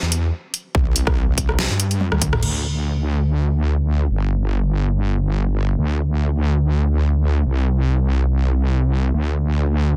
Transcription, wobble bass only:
0.02 0.31 E2 loud
0.75 1.05 C2 loud
1.07 1.26 C2 medium
1.28 1.57 C2 loud
1.59 1.68 C2 loud
1.70 2.10 G2 loud
2.12 2.41 D2 loud
2.43 4.08 D2 medium
4.10 5.76 G1 medium
5.78 7.44 D2 medium
7.46 9.12 C2 medium
9.14 9.97 D2 medium

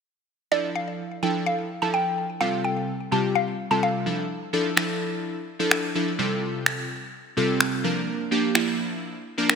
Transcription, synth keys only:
0.51 1.02 F3 medium
0.51 1.02 D4 medium
0.51 1.02 E4 medium
0.51 1.02 A4 medium
1.22 1.64 F3 medium
1.22 1.65 D4 medium
1.22 1.65 E4 medium
1.22 1.65 A4 medium
1.82 2.24 F3 medium
1.82 2.24 D4 medium
1.82 2.24 E4 medium
1.82 2.24 A4 medium
2.41 2.91 C3 medium
2.41 2.91 G3 medium
2.41 2.91 C4 medium
2.41 2.91 F4 medium
2.41 2.91 A4 medium
3.11 3.53 C3 medium
3.11 3.54 G3 medium
3.11 3.54 C4 medium
3.11 3.54 F4 medium
3.11 3.54 G4 medium
3.71 4.06 C3 medium
3.71 4.06 G3 medium
3.71 4.06 C4 medium
3.71 4.06 F4 medium
3.71 4.05 A4 medium
4.06 4.25 F3 medium
4.06 4.25 D4 medium
4.06 4.25 E4 medium
4.06 4.25 A4 medium
4.53 4.70 F3 medium
4.53 4.70 D4 medium
4.53 4.70 E4 medium
4.53 4.70 A4 loud
4.76 5.35 F3 medium
4.76 5.35 D4 medium
4.76 5.35 E4 medium
4.76 5.36 A4 loud
5.59 5.85 F3 medium
5.59 5.85 D4 medium
5.59 5.85 E4 medium
5.59 5.85 A4 loud
5.95 6.12 F3 medium
5.95 6.12 D4 medium
5.95 6.12 E4 medium
5.95 6.12 A4 medium
6.18 6.86 C3 medium
6.18 6.86 G3 medium
6.18 6.86 C4 medium
6.18 6.86 F4 medium
6.18 6.86 A4 loud
7.37 7.84 C3 medium
7.37 7.84 G3 medium
7.37 7.84 C4 medium
7.37 7.84 F4 medium
7.37 7.84 A4 loud
7.84 8.22 F3 medium
7.84 8.22 A#3 medium
7.84 8.22 D4 medium
7.84 8.22 A#4 medium
8.31 8.48 F3 medium
8.31 8.48 A#3 medium
8.31 8.48 D4 medium
8.31 8.48 G4 loud
8.54 9.13 F3 medium
8.54 9.14 A#3 medium
8.54 9.14 D4 medium
8.54 9.14 E4 loud
9.38 9.55 F3 medium
9.38 9.55 A#3 medium
9.38 9.55 D4 medium
9.38 9.55 A#4 loud

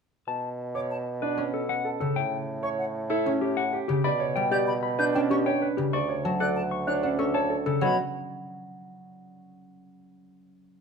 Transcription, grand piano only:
0.75 0.95 C#5 medium
1.22 1.43 D4 medium
1.38 1.58 C#4 soft
1.85 2.05 A4 medium
2.63 2.84 C#5 medium
3.10 3.31 E4 medium
3.26 3.47 C#4 medium
3.73 3.94 G4 medium
4.04 4.25 D5 medium
4.20 4.41 C#5 medium
4.51 4.72 D5 medium
4.99 5.19 D4 medium
5.15 5.35 C#4 medium
5.46 5.67 C#5 medium
5.62 5.82 B4 medium
5.93 6.14 D5 medium
6.09 6.29 C#5 medium
6.40 6.61 D5 medium
6.87 7.08 D4 medium
7.03 7.24 C#4 medium
7.34 7.55 C#5 medium
7.50 7.71 A4 medium
7.82 7.96 F#4 medium

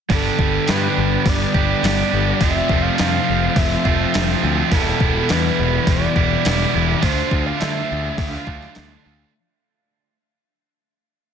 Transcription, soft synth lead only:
0.14 0.72 A4 medium
0.70 1.30 B4 medium
1.29 1.85 D5 medium
1.87 2.41 D5 loud
2.39 2.84 E5 loud
2.82 2.98 F5 loud
2.99 3.59 F5 loud
3.58 4.15 E5 medium
4.74 5.32 A4 medium
5.30 5.90 B4 loud
5.89 6.46 D5 medium
6.47 7.05 D5 loud
7.04 7.48 C5 loud
7.46 7.62 F5 loud
7.60 8.18 E5 loud
8.20 8.73 F5 medium

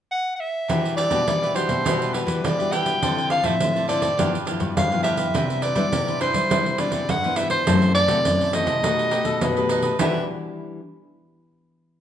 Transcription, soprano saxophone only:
0.11 0.32 F#5 medium
0.36 0.42 F#5 medium
0.40 0.96 E5 medium
0.97 1.57 D5 medium
1.56 2.15 C5 medium
2.14 2.46 B4 medium
2.45 2.74 D5 medium
2.72 3.31 G5 loud
3.31 3.47 F5 medium
3.46 3.88 E5 medium
3.89 4.43 D5 medium
4.78 5.03 F5 medium
5.04 5.64 E5 medium
5.63 6.21 D5 medium
6.22 6.81 C5 medium
6.80 7.12 D5 medium
7.10 7.39 F#5 medium
7.37 7.50 E5 medium
7.51 7.92 C5 medium
7.95 8.57 D5 medium
8.55 9.71 D#5 medium
10.00 10.27 E5 medium

